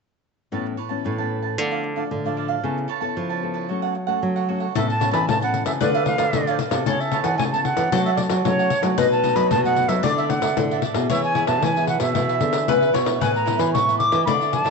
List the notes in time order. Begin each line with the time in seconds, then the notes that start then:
0.52 A2 E3 B3 C#4 B4 C#5 A5
0.66 muted cavaquinho stroke
0.77 B4 C#5 A5
0.89 E3 B3 C#4 B4 A5
1.04 A2 E3 B4 C#5 A5
1.18 E3 B3 C#4 B4 A5
1.42 B4 A5
1.57 D3 F3 A3 D4 A4 D5 F5
1.71 A4 D5 F5
1.83 muted cavaquinho stroke
1.96 F3 A3 D4 A4 D5 F5
2.11 A2 D3
2.24 F3 A3 D4 A4 D5 F5
2.37 D4 A4 D5 F5
2.48 A4 D5 F5
2.63 C#3 B3 E4 A4 B4 C#5 A5
2.77 muted cavaquinho stroke
2.88 A4 B4 C#5 A5
3.01 B3 E4 A4 B4 C#5 A5
3.16 C#3 F3 A4 B4 C#5 A5
3.29 B4 C#5 A5
3.43 B3 E4 A4
3.54 B4 C#5 A5
3.69 F#3 A3 C#4 F#4 A4 C#5 F#5
3.82 A4 C#5 F#5
3.95 muted cavaquinho stroke
4.07 A3 C#4 A4 C#5 F#5
4.23 C#3 F#3
4.36 A4 C#5 F#5
4.49 A3 C#4 F#4 A4 C#5 F#5
4.60 A4 C#5 F#5
4.74 A2 E3 B3 C#4 A4 B4 C#5 E5 A5, pandeiro
4.89 A5, muted cavaquinho stroke, pandeiro
5.00 E3 B3 C#4 B4 C#5 A5, pandeiro
5.11 E3 B4 A5 B5, pandeiro
5.27 A2 E3 C#5 A5, pandeiro
5.41 E3 B3 C#4 B4 F#5 A5, pandeiro
5.54 pandeiro
5.65 C#3 B4 E5 A5, pandeiro
5.81 D3 F3 A3 D4 A4 B4 D5 F5, pandeiro
5.94 A4 D5 E5 F5, pandeiro
6.06 F3 A3 D4 F5, muted cavaquinho stroke, pandeiro
6.18 D3 A4 D5 F5, pandeiro
6.33 A2 D3 F3 A3 D4, pandeiro
6.47 A4 D5 F5, pandeiro
6.59 D4 A4 D5 F5, pandeiro
6.71 C3 B3 E4 A4 D5 F5, pandeiro
6.86 C#3 A4 B4 C#5 A5, pandeiro
7.00 E5, muted cavaquinho stroke, pandeiro
7.12 B3 E4 A4 B4 C#5 A5, pandeiro
7.23 E3 B4 C#5 F#5 A5, pandeiro
7.38 C#3 A4 C#5 G#5, pandeiro
7.42 B4 A5
7.52 B3 E4 A4 B4 A5, pandeiro
7.56 C#5
7.64 F#5, pandeiro
7.77 E3 B4 C#5 A5, pandeiro
7.91 F#3 A3 C#4 F#4 A4 C#5 F#5, pandeiro
8.05 A4 C#5 E5 F#5, pandeiro
8.16 A3 C#4 A4 D5, muted cavaquinho stroke, pandeiro
8.30 F#3 A4 C#5 F#5, pandeiro
8.44 C#3 F#3 A3 C#4 A4 C#5, pandeiro
8.59 A4 C#5 F#5, pandeiro
8.70 F#4 A4 C#5 F#5, pandeiro
8.82 F#3 A3 D#4 A4 C#5 F#5, pandeiro
8.98 B2 D#4 A4 B4 D#5, pandeiro
9.11 A5, muted cavaquinho stroke, pandeiro
9.23 F#3 A3 D#4 A4 B4 D#5, pandeiro
9.35 F#3 A4 B4 D#5 B5, pandeiro
9.51 F#2 B2 D#4 A4 B4 D#5 A5, pandeiro
9.64 F#3 A3 D#4 A4 B4 D#5 F#5, pandeiro
9.76 pandeiro
9.88 F#3 A4 B4 D#5 E5, pandeiro
10.03 D3 E3 A3 D4 A4 D5 E5, pandeiro
10.17 A4 D5 E5, pandeiro
10.28 E3 A3 D4 F#5, muted cavaquinho stroke, pandeiro
10.41 D3 A4 D5 E5, pandeiro
10.55 A2 D3 E3 A3 D4, pandeiro
10.71 A4 D5 E5, pandeiro
10.82 D4 A4 D5 E5, pandeiro
10.94 B2 B3 E4 G#4 A4 D5 E5, pandeiro
11.09 E3 E4 G#4 B4 C#5 E5, pandeiro
11.23 G#5, muted cavaquinho stroke, pandeiro
11.34 B3 E4 G#4 B4 E5, pandeiro
11.47 B2 G#4 B4 E5 A5, pandeiro
11.62 B2 E3 E4 G#4 B4 E5 G#5, pandeiro
11.76 B3 E4 G#4 B4 E5, pandeiro
11.87 F#5, pandeiro
12.00 B2 G#4 B4 E5, pandeiro
12.15 B2 E3 E4 G#4 B4 E5, pandeiro
12.29 G#4 B4 E5, pandeiro
12.40 D3 B3 E4 G#4, muted cavaquinho stroke, pandeiro
12.52 G#4 B4 E5, pandeiro
12.68 B2 C#3 B3 E4 G#4 B4, pandeiro
12.81 G#4 B4 E5, pandeiro
12.93 B2 E4 G#4 B4 C#5 E5, pandeiro
13.05 E3 B3 E4 G#4 B4 E5, pandeiro
13.21 A2 E4 A4 B4 E5 G#5, pandeiro
13.34 A#5, muted cavaquinho stroke, pandeiro
13.45 E3 B3 E4 A4 B4 E5, pandeiro
13.58 E3 A4 B4 E5 B5, pandeiro
13.73 A2 E4 A4 B4 E5 C#6, pandeiro
13.88 E3 B3 E4 A4 B4 E5, pandeiro
13.98 D6, pandeiro
14.11 E3 A4 B4 E5, pandeiro
14.25 D3 F3 A3 E4 F4 A4 D5 E5 B5, pandeiro
14.41 A4 D5 E5, pandeiro
14.52 F3 A3 E4 A5, muted cavaquinho stroke, pandeiro
14.64 D3 A4 D5 E5, pandeiro